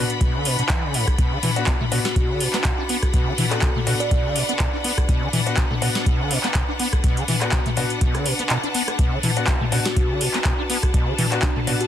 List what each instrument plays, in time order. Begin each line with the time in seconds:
Already playing: string section D4 B4 F#5 B5
0.10 closed hi-hat
0.21 acid bass B2, kick, closed hi-hat
0.34 acid bass D3
0.45 acid bass B2, open hi-hat
0.59 acid bass B2, closed hi-hat
0.69 acid bass E3, kick, clap, closed hi-hat
0.83 acid bass C#3
0.94 acid bass A2, open hi-hat
1.07 kick, cross-stick, closed hi-hat
1.18 acid bass B2, kick, closed hi-hat
1.32 acid bass D3
1.43 acid bass E3, open hi-hat, mid tom
1.56 grand piano B3 D4 F#4, closed hi-hat
1.67 acid bass B2, kick, clap, closed hi-hat
1.81 acid bass A3, mid tom
1.92 acid bass B2, grand piano B3 D4 F#4, open hi-hat
2.05 kalimba F#4, snare, closed hi-hat
2.16 acid bass B2, kick, closed hi-hat
2.29 acid bass D3
2.40 acid bass B2, open hi-hat
2.53 acid bass B3, snare, clap, closed hi-hat
2.64 acid bass B2, kick, clap, closed hi-hat
2.78 acid bass D4
2.89 acid bass B3, open hi-hat
3.03 kick, cross-stick, closed hi-hat
3.14 acid bass B2, kick, closed hi-hat
3.27 acid bass D3
3.38 acid bass E3, open hi-hat, mid tom
3.51 grand piano B3 D4 F#4, kalimba A4, clap, closed hi-hat
3.62 acid bass B2, kick, clap, closed hi-hat
3.76 acid bass A3, mid tom
3.87 acid bass B2, grand piano B3 D4 F#4, open hi-hat
4.00 kalimba D5, closed hi-hat
4.11 acid bass B2, kick, closed hi-hat
4.25 acid bass D3
4.36 acid bass B2, open hi-hat
4.49 acid bass B3, closed hi-hat
4.60 acid bass B2, kick, clap, closed hi-hat
4.73 acid bass D4
4.84 acid bass B3, open hi-hat
4.98 kick, cross-stick, closed hi-hat
5.09 acid bass B2, kick, closed hi-hat
5.22 acid bass D3
5.33 acid bass E3, open hi-hat, mid tom
5.46 grand piano B3 D4 F#4, closed hi-hat
5.57 acid bass B2, kick, clap, closed hi-hat
5.71 acid bass A3, mid tom
5.82 acid bass B2, grand piano B3 D4 F#4, open hi-hat
5.95 snare, closed hi-hat
6.06 acid bass B2, kick, closed hi-hat
6.20 acid bass D3
6.31 acid bass B2, open hi-hat
6.44 acid bass B3, snare, clap, closed hi-hat
6.55 acid bass B2, kick, clap, closed hi-hat
6.68 acid bass D4
6.79 acid bass B3, open hi-hat
6.93 kick, cross-stick, closed hi-hat
7.04 acid bass B2, kick, closed hi-hat
7.17 acid bass D3, closed hi-hat
7.28 acid bass E3, open hi-hat, mid tom
7.41 grand piano B3 D4 F#4, cross-stick, clap, closed hi-hat
7.52 acid bass B2, kick, clap, closed hi-hat
7.66 acid bass A3, closed hi-hat, mid tom
7.77 acid bass B2, grand piano B3 D4 F#4, open hi-hat
7.90 closed hi-hat
8.01 acid bass B2, kick, closed hi-hat
8.15 acid bass D3, cross-stick, closed hi-hat
8.26 acid bass B2, open hi-hat
8.39 acid bass B3, closed hi-hat
8.50 acid bass B2, clap, closed hi-hat
8.56 string section A5
8.63 acid bass D4, closed hi-hat
8.74 acid bass B3, open hi-hat
8.88 cross-stick, closed hi-hat
8.99 acid bass B2, kick, closed hi-hat
9.12 acid bass D3
9.23 acid bass E3, open hi-hat, mid tom
9.37 grand piano B3 D4 F#4, closed hi-hat
9.47 acid bass B2, kick, clap, closed hi-hat
9.61 acid bass A3, mid tom
9.72 acid bass B2, grand piano B3 D4 F#4, open hi-hat
9.85 kalimba F#4, snare, closed hi-hat
9.96 acid bass B2, kick, closed hi-hat
10.10 acid bass D3
10.21 acid bass B2, open hi-hat
10.34 acid bass B3, snare, clap, closed hi-hat
10.45 acid bass B2, kick, clap, closed hi-hat
10.59 acid bass D4
10.70 acid bass B3, open hi-hat
10.83 kick, cross-stick, closed hi-hat
10.94 acid bass B2, kick, closed hi-hat
11.07 acid bass D3
11.18 acid bass E3, open hi-hat, mid tom
11.31 grand piano B3 D4 F#4, clap, closed hi-hat
11.42 acid bass B2, kalimba D4, kick, clap, closed hi-hat
11.56 acid bass A3, mid tom
11.67 acid bass B2, grand piano B3 D4 F#4, open hi-hat
11.81 kalimba F#4, closed hi-hat